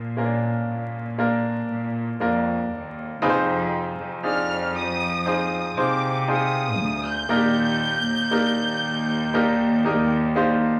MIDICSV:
0, 0, Header, 1, 4, 480
1, 0, Start_track
1, 0, Tempo, 1016949
1, 1526, Time_signature, 4, 2, 24, 8
1, 5097, End_track
2, 0, Start_track
2, 0, Title_t, "Violin section"
2, 0, Program_c, 0, 48
2, 2013, Note_on_c, 0, 89, 90
2, 2233, Note_off_c, 0, 89, 0
2, 2254, Note_on_c, 0, 87, 93
2, 2712, Note_off_c, 0, 87, 0
2, 2733, Note_on_c, 0, 86, 83
2, 2953, Note_off_c, 0, 86, 0
2, 2975, Note_on_c, 0, 87, 94
2, 3331, Note_off_c, 0, 87, 0
2, 3337, Note_on_c, 0, 91, 105
2, 4772, Note_off_c, 0, 91, 0
2, 5097, End_track
3, 0, Start_track
3, 0, Title_t, "Grand piano"
3, 0, Program_c, 1, 0
3, 0, Control_c, 1, 64, 127
3, 0, Note_on_c, 1, 46, 61
3, 0, Note_on_c, 1, 53, 62
3, 0, Note_on_c, 1, 58, 69
3, 0, Note_on_c, 1, 62, 68
3, 0, Note_on_c, 1, 65, 68
3, 0, Note_on_c, 1, 70, 74
3, 58, Note_off_c, 1, 58, 0
3, 59, Note_off_c, 1, 62, 0
3, 60, Note_off_c, 1, 65, 0
3, 60, Note_off_c, 1, 70, 0
3, 80, Note_on_c, 1, 58, 72
3, 84, Note_on_c, 1, 61, 56
3, 84, Note_on_c, 1, 65, 68
3, 87, Note_on_c, 1, 70, 78
3, 113, Note_on_c, 1, 62, 68
3, 116, Note_off_c, 1, 61, 0
3, 304, Note_off_c, 1, 53, 0
3, 305, Note_off_c, 1, 46, 0
3, 539, Note_off_c, 1, 58, 0
3, 541, Note_off_c, 1, 65, 0
3, 543, Note_off_c, 1, 70, 0
3, 553, Note_off_c, 1, 62, 0
3, 559, Note_on_c, 1, 58, 80
3, 560, Note_on_c, 1, 62, 78
3, 560, Note_on_c, 1, 65, 73
3, 564, Note_on_c, 1, 70, 91
3, 1019, Note_off_c, 1, 58, 0
3, 1019, Note_off_c, 1, 62, 0
3, 1019, Note_off_c, 1, 65, 0
3, 1021, Note_off_c, 1, 70, 0
3, 1040, Note_on_c, 1, 58, 77
3, 1042, Note_on_c, 1, 62, 73
3, 1044, Note_on_c, 1, 65, 71
3, 1044, Note_on_c, 1, 70, 88
3, 1499, Note_off_c, 1, 58, 0
3, 1500, Note_off_c, 1, 62, 0
3, 1501, Note_off_c, 1, 65, 0
3, 1501, Note_off_c, 1, 70, 0
3, 1519, Note_on_c, 1, 60, 107
3, 1519, Note_on_c, 1, 63, 103
3, 1519, Note_on_c, 1, 65, 93
3, 1521, Note_on_c, 1, 48, 71
3, 1522, Note_on_c, 1, 68, 96
3, 1522, Note_on_c, 1, 71, 88
3, 1533, Control_c, 1, 64, 0
3, 1555, Note_off_c, 1, 71, 0
3, 1555, Note_on_c, 1, 72, 114
3, 1609, Control_c, 1, 64, 127
3, 1979, Note_off_c, 1, 60, 0
3, 1979, Note_off_c, 1, 63, 0
3, 1979, Note_off_c, 1, 65, 0
3, 1980, Note_off_c, 1, 68, 0
3, 1997, Note_off_c, 1, 72, 0
3, 1997, Note_on_c, 1, 60, 65
3, 1999, Note_on_c, 1, 63, 64
3, 1999, Note_on_c, 1, 65, 63
3, 2000, Note_on_c, 1, 68, 65
3, 2001, Note_on_c, 1, 62, 81
3, 2225, Note_off_c, 1, 48, 0
3, 2458, Note_off_c, 1, 60, 0
3, 2459, Note_off_c, 1, 63, 0
3, 2459, Note_off_c, 1, 65, 0
3, 2459, Note_off_c, 1, 68, 0
3, 2460, Note_off_c, 1, 62, 0
3, 2481, Note_on_c, 1, 60, 76
3, 2483, Note_on_c, 1, 63, 68
3, 2485, Note_on_c, 1, 65, 67
3, 2485, Note_on_c, 1, 68, 65
3, 2487, Note_on_c, 1, 72, 80
3, 2712, Note_off_c, 1, 60, 0
3, 2713, Note_off_c, 1, 63, 0
3, 2714, Note_off_c, 1, 65, 0
3, 2714, Note_off_c, 1, 68, 0
3, 2715, Note_off_c, 1, 72, 0
3, 2723, Note_on_c, 1, 60, 67
3, 2724, Note_on_c, 1, 63, 65
3, 2726, Note_on_c, 1, 72, 79
3, 2727, Note_on_c, 1, 65, 64
3, 2727, Note_on_c, 1, 68, 62
3, 2953, Note_off_c, 1, 60, 0
3, 2953, Note_off_c, 1, 63, 0
3, 2954, Note_off_c, 1, 72, 0
3, 2955, Note_off_c, 1, 65, 0
3, 2955, Note_off_c, 1, 68, 0
3, 2961, Note_on_c, 1, 60, 70
3, 2964, Note_on_c, 1, 63, 63
3, 2965, Note_on_c, 1, 65, 67
3, 2966, Note_on_c, 1, 68, 67
3, 2967, Note_on_c, 1, 72, 76
3, 3420, Note_off_c, 1, 60, 0
3, 3421, Note_off_c, 1, 63, 0
3, 3422, Note_off_c, 1, 65, 0
3, 3422, Note_off_c, 1, 68, 0
3, 3423, Note_off_c, 1, 72, 0
3, 3441, Note_on_c, 1, 58, 92
3, 3442, Note_on_c, 1, 62, 88
3, 3444, Note_on_c, 1, 46, 58
3, 3444, Note_on_c, 1, 63, 82
3, 3444, Note_on_c, 1, 65, 68
3, 3446, Note_on_c, 1, 70, 101
3, 3453, Control_c, 1, 64, 0
3, 3475, Note_on_c, 1, 67, 81
3, 3476, Note_off_c, 1, 65, 0
3, 3541, Control_c, 1, 64, 127
3, 3900, Note_off_c, 1, 58, 0
3, 3900, Note_off_c, 1, 62, 0
3, 3901, Note_off_c, 1, 63, 0
3, 3902, Note_off_c, 1, 70, 0
3, 3917, Note_off_c, 1, 67, 0
3, 3924, Note_on_c, 1, 58, 86
3, 3926, Note_on_c, 1, 62, 76
3, 3926, Note_on_c, 1, 63, 79
3, 3928, Note_on_c, 1, 67, 83
3, 3930, Note_on_c, 1, 70, 97
3, 4146, Note_off_c, 1, 46, 0
3, 4381, Note_off_c, 1, 58, 0
3, 4382, Note_off_c, 1, 62, 0
3, 4382, Note_off_c, 1, 63, 0
3, 4383, Note_off_c, 1, 67, 0
3, 4384, Note_off_c, 1, 70, 0
3, 4408, Note_on_c, 1, 58, 91
3, 4408, Note_on_c, 1, 62, 82
3, 4410, Note_on_c, 1, 63, 83
3, 4411, Note_on_c, 1, 67, 84
3, 4411, Note_on_c, 1, 70, 101
3, 4635, Note_off_c, 1, 58, 0
3, 4635, Note_off_c, 1, 62, 0
3, 4636, Note_off_c, 1, 63, 0
3, 4637, Note_off_c, 1, 67, 0
3, 4637, Note_off_c, 1, 70, 0
3, 4648, Note_on_c, 1, 58, 85
3, 4648, Note_on_c, 1, 74, 77
3, 4650, Note_on_c, 1, 75, 75
3, 4651, Note_on_c, 1, 63, 76
3, 4651, Note_on_c, 1, 67, 76
3, 4652, Note_on_c, 1, 70, 96
3, 4872, Note_off_c, 1, 75, 0
3, 4875, Note_off_c, 1, 58, 0
3, 4875, Note_off_c, 1, 74, 0
3, 4877, Note_off_c, 1, 63, 0
3, 4877, Note_off_c, 1, 67, 0
3, 4877, Note_off_c, 1, 70, 0
3, 4888, Note_on_c, 1, 58, 88
3, 4890, Note_on_c, 1, 63, 84
3, 4890, Note_on_c, 1, 77, 75
3, 4891, Note_on_c, 1, 62, 81
3, 4892, Note_on_c, 1, 67, 82
3, 4895, Note_on_c, 1, 72, 98
3, 5097, Note_off_c, 1, 58, 0
3, 5097, Note_off_c, 1, 62, 0
3, 5097, Note_off_c, 1, 63, 0
3, 5097, Note_off_c, 1, 67, 0
3, 5097, Note_off_c, 1, 72, 0
3, 5097, Note_off_c, 1, 77, 0
3, 5097, End_track
4, 0, Start_track
4, 0, Title_t, "Cello section"
4, 0, Program_c, 2, 48
4, 0, Note_on_c, 2, 46, 81
4, 307, Note_off_c, 2, 46, 0
4, 325, Note_on_c, 2, 46, 83
4, 787, Note_off_c, 2, 46, 0
4, 806, Note_on_c, 2, 46, 84
4, 1029, Note_off_c, 2, 46, 0
4, 1044, Note_on_c, 2, 41, 86
4, 1269, Note_off_c, 2, 41, 0
4, 1287, Note_on_c, 2, 39, 79
4, 1510, Note_off_c, 2, 39, 0
4, 1530, Note_on_c, 2, 41, 115
4, 1869, Note_off_c, 2, 41, 0
4, 1887, Note_on_c, 2, 41, 94
4, 2708, Note_off_c, 2, 41, 0
4, 2732, Note_on_c, 2, 48, 101
4, 3209, Note_off_c, 2, 48, 0
4, 3210, Note_on_c, 2, 38, 85
4, 3431, Note_off_c, 2, 38, 0
4, 3449, Note_on_c, 2, 39, 111
4, 3789, Note_off_c, 2, 39, 0
4, 3810, Note_on_c, 2, 39, 113
4, 5097, Note_off_c, 2, 39, 0
4, 5097, End_track
0, 0, End_of_file